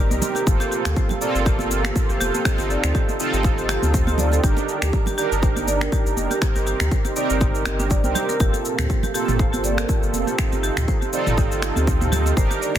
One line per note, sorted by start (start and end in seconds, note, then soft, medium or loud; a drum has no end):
0.00 0.13 G1 loud
0.00 0.44 C4 loud
0.00 0.44 D#4 medium
0.00 0.10 G4 medium
0.00 0.44 G4 medium
0.00 0.44 A#4 loud
0.11 0.19 C2 loud
0.11 high conga loud
0.11 shaker medium
0.22 high conga medium
0.22 low conga loud
0.22 shaker medium
0.35 0.46 G4 medium
0.35 muted conga soft
0.35 shaker medium
0.47 0.57 G1 loud
0.47 1.18 A#3 medium
0.47 1.18 C4 medium
0.47 1.18 F4 medium
0.47 1.19 A4 medium
0.47 kick loud
0.47 shaker medium
0.60 0.70 G4 medium
0.60 muted conga medium
0.60 shaker soft
0.71 0.84 G4 medium
0.71 shaker soft
0.85 0.94 D2 medium
0.85 finger snap medium
0.85 muted conga soft
0.85 shaker medium
0.96 1.09 C5 medium
0.96 kick loud
0.96 shaker soft
1.09 1.20 G4 medium
1.09 muted conga soft
1.09 low conga medium
1.09 shaker soft
1.21 2.42 A#3 loud
1.21 2.42 C4 medium
1.21 2.42 F4 medium
1.21 2.42 A4 loud
1.21 1.34 D5 medium
1.21 shaker medium
1.35 1.91 G1 medium
1.35 1.45 A#4 medium
1.35 shaker medium
1.45 1.59 G4 medium
1.45 kick loud
1.45 muted conga soft
1.45 shaker medium
1.59 high conga medium
1.59 shaker medium
1.71 muted conga soft
1.71 shaker medium
1.84 1.95 G4 medium
1.84 finger snap medium
1.84 high conga medium
1.84 shaker medium
1.95 kick loud
1.95 muted conga soft
1.95 shaker medium
2.09 2.18 G1 medium
2.09 2.19 G4 medium
2.09 shaker soft
2.20 2.31 F1 medium
2.20 2.33 G4 loud
2.20 high conga medium
2.20 shaker medium
2.35 muted conga soft
2.35 shaker soft
2.45 3.17 C4 medium
2.45 3.17 D#4 medium
2.45 3.17 A4 medium
2.45 2.58 C5 medium
2.45 finger snap medium
2.45 kick loud
2.45 shaker medium
2.58 2.77 G1 medium
2.58 2.69 G4 medium
2.58 muted conga medium
2.58 shaker medium
2.70 2.83 D5 medium
2.70 shaker soft
2.84 2.92 D2 loud
2.84 2.94 A4 medium
2.84 finger snap medium
2.84 muted conga soft
2.84 shaker medium
2.95 3.08 G4 medium
2.95 kick loud
2.95 shaker soft
3.09 muted conga soft
3.09 shaker soft
3.20 4.41 C4 loud
3.20 4.41 D#4 medium
3.20 4.41 F4 medium
3.20 4.41 A4 loud
3.20 shaker medium
3.33 3.77 G1 medium
3.33 3.43 G4 medium
3.33 shaker soft
3.43 kick loud
3.43 muted conga soft
3.43 shaker soft
3.58 3.68 G4 medium
3.58 shaker soft
3.69 3.81 G4 medium
3.69 finger snap medium
3.69 muted conga medium
3.69 shaker medium
3.82 4.39 D2 medium
3.82 high conga medium
3.82 shaker soft
3.93 4.06 C5 medium
3.93 kick loud
3.93 muted conga soft
3.93 shaker medium
4.07 4.18 G4 medium
4.07 high conga loud
4.07 shaker medium
4.18 4.32 D5 medium
4.18 high conga medium
4.18 low conga medium
4.18 shaker medium
4.32 4.42 A4 medium
4.32 muted conga soft
4.32 shaker soft
4.43 4.54 G1 loud
4.43 5.15 D4 medium
4.43 5.15 D#4 medium
4.43 5.15 G4 medium
4.43 4.57 G4 medium
4.43 5.15 A#4 medium
4.43 kick loud
4.43 shaker medium
4.57 muted conga medium
4.57 shaker soft
4.69 shaker soft
4.82 4.90 D2 medium
4.82 4.92 G4 medium
4.82 finger snap medium
4.82 muted conga soft
4.82 shaker medium
4.93 kick loud
4.93 shaker soft
5.06 5.17 G4 medium
5.06 muted conga soft
5.06 low conga medium
5.06 shaker soft
5.18 6.39 D4 medium
5.18 6.39 D#4 medium
5.18 6.39 G4 medium
5.18 5.30 G4 loud
5.18 6.39 A#4 loud
5.18 shaker medium
5.32 5.88 G1 medium
5.32 shaker soft
5.42 5.55 C5 medium
5.42 kick loud
5.42 muted conga soft
5.42 shaker soft
5.56 5.66 G4 medium
5.56 high conga medium
5.56 shaker soft
5.67 5.81 D5 medium
5.67 muted conga medium
5.67 shaker medium
5.81 5.91 A#4 medium
5.81 finger snap medium
5.81 high conga medium
5.81 shaker soft
5.92 6.05 G4 medium
5.92 kick loud
5.92 muted conga soft
5.92 shaker medium
6.06 6.14 G1 medium
6.06 shaker soft
6.17 6.28 F1 medium
6.17 high conga medium
6.17 shaker medium
6.31 6.41 G4 medium
6.31 muted conga medium
6.31 shaker soft
6.42 7.14 C4 medium
6.42 7.14 D#4 medium
6.42 7.14 G4 medium
6.42 7.14 A#4 medium
6.42 finger snap medium
6.42 kick loud
6.42 shaker medium
6.56 6.74 G1 medium
6.56 6.65 G4 medium
6.56 muted conga soft
6.56 shaker medium
6.67 6.79 G4 medium
6.67 shaker soft
6.80 6.89 D2 loud
6.80 finger snap medium
6.80 muted conga soft
6.80 shaker medium
6.91 7.04 C5 medium
6.91 kick loud
6.91 shaker soft
7.05 7.15 G4 medium
7.05 muted conga soft
7.05 shaker soft
7.16 7.63 C4 loud
7.16 7.64 D#4 medium
7.16 7.64 G4 medium
7.16 7.64 A#4 loud
7.16 7.29 D5 medium
7.16 shaker medium
7.30 7.66 G1 medium
7.30 7.40 A#4 medium
7.30 shaker soft
7.41 7.54 G4 medium
7.41 kick loud
7.41 muted conga soft
7.41 shaker soft
7.55 shaker medium
7.65 8.06 G1 medium
7.65 8.01 C4 medium
7.65 8.01 D#4 medium
7.65 8.01 G4 medium
7.65 8.01 A#4 medium
7.65 finger snap medium
7.65 muted conga medium
7.65 shaker medium
7.79 7.90 D4 medium
7.79 high conga medium
7.79 shaker medium
7.90 8.03 D5 medium
7.90 kick loud
7.90 muted conga soft
7.90 shaker medium
8.04 8.13 C2 loud
8.04 8.37 C4 medium
8.04 8.37 D#4 medium
8.04 8.37 G4 medium
8.04 8.37 A#4 loud
8.04 8.15 G5 medium
8.04 high conga loud
8.04 shaker soft
8.15 8.28 G4 loud
8.15 high conga medium
8.15 low conga medium
8.15 shaker medium
8.29 8.35 A#4 loud
8.29 muted conga soft
8.29 shaker soft
8.40 8.51 G1 loud
8.40 9.12 A#3 medium
8.40 9.12 C4 medium
8.40 9.12 F4 medium
8.40 8.53 G4 medium
8.40 9.12 A4 medium
8.40 kick loud
8.40 shaker medium
8.54 muted conga medium
8.54 shaker medium
8.65 shaker medium
8.79 8.87 D2 loud
8.79 8.89 G4 medium
8.79 finger snap loud
8.79 mid tom medium
8.79 muted conga soft
8.79 shaker medium
8.90 kick loud
8.90 shaker medium
9.03 9.13 G4 medium
9.03 muted conga soft
9.03 low conga medium
9.03 shaker medium
9.14 10.36 A#3 medium
9.14 10.36 C4 medium
9.14 10.36 F4 medium
9.14 9.27 G4 loud
9.14 10.36 A4 loud
9.14 shaker medium
9.28 9.84 G1 medium
9.28 mid tom medium
9.28 shaker medium
9.39 9.52 C5 medium
9.39 kick loud
9.39 muted conga soft
9.39 shaker medium
9.53 9.63 G4 medium
9.53 high conga medium
9.53 shaker medium
9.64 9.77 D5 medium
9.64 muted conga medium
9.64 shaker medium
9.78 9.88 A#4 medium
9.78 finger snap medium
9.78 high conga medium
9.78 shaker medium
9.88 10.02 G4 medium
9.88 kick loud
9.88 muted conga soft
9.88 shaker medium
10.03 10.11 G1 medium
10.03 shaker soft
10.13 10.24 F1 medium
10.13 high conga medium
10.13 shaker medium
10.27 10.37 G4 medium
10.27 muted conga soft
10.27 shaker soft
10.38 11.10 C4 medium
10.38 11.10 D#4 medium
10.38 11.10 A4 medium
10.38 finger snap medium
10.38 kick loud
10.38 shaker medium
10.52 10.70 G1 medium
10.52 10.62 G4 medium
10.52 muted conga soft
10.52 shaker medium
10.63 10.76 G4 medium
10.63 shaker soft
10.77 10.85 D2 loud
10.77 finger snap loud
10.77 mid tom medium
10.77 muted conga soft
10.77 shaker loud
10.88 11.00 C5 medium
10.88 kick loud
10.88 shaker medium
11.02 11.12 G4 medium
11.02 muted conga soft
11.02 shaker medium
11.13 12.34 C4 loud
11.13 12.34 D#4 medium
11.13 12.34 F4 medium
11.13 12.34 A4 loud
11.13 11.26 D5 medium
11.13 shaker medium
11.26 11.71 G1 medium
11.26 11.37 A4 medium
11.26 mid tom medium
11.26 shaker medium
11.37 11.51 G4 medium
11.37 kick loud
11.37 muted conga soft
11.37 shaker medium
11.52 shaker medium
11.62 finger snap medium
11.62 muted conga soft
11.62 shaker medium
11.76 12.33 D2 loud
11.76 11.86 G4 medium
11.76 high conga medium
11.76 shaker medium
11.87 kick loud
11.87 muted conga soft
11.87 shaker medium
12.01 12.11 G4 medium
12.01 mid tom medium
12.01 high conga loud
12.01 shaker soft
12.12 12.24 G4 loud
12.12 high conga medium
12.12 low conga loud
12.12 shaker medium
12.26 muted conga medium
12.26 shaker soft
12.37 12.47 G1 loud
12.37 12.78 D4 medium
12.37 12.78 D#4 medium
12.37 12.78 G4 medium
12.37 12.78 A#4 medium
12.37 12.49 C5 medium
12.37 kick loud
12.37 shaker medium
12.50 12.61 G4 medium
12.50 muted conga soft
12.50 shaker medium
12.61 12.75 D5 medium
12.61 shaker medium
12.75 12.78 A#4 medium
12.75 muted conga soft